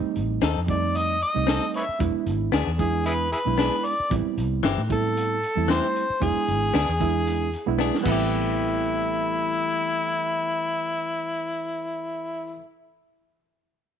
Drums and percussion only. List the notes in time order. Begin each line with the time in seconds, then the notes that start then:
0.16 closed hi-hat
0.42 snare, closed hi-hat
0.68 kick, closed hi-hat
0.95 closed hi-hat
1.21 closed hi-hat
1.48 snare, closed hi-hat
1.74 closed hi-hat
2.00 kick, closed hi-hat
2.27 closed hi-hat
2.53 snare, closed hi-hat
2.79 kick, closed hi-hat
3.05 closed hi-hat
3.32 closed hi-hat
3.58 snare, closed hi-hat
3.85 closed hi-hat
4.11 kick, closed hi-hat
4.38 closed hi-hat
4.64 snare, closed hi-hat
4.90 kick, closed hi-hat
5.17 closed hi-hat
5.43 closed hi-hat
5.69 snare, closed hi-hat
5.96 closed hi-hat
6.22 kick, closed hi-hat
6.48 closed hi-hat
6.75 snare, closed hi-hat
7.01 kick, closed hi-hat
7.27 closed hi-hat
7.53 closed hi-hat
7.80 snare
7.95 snare
8.06 kick, crash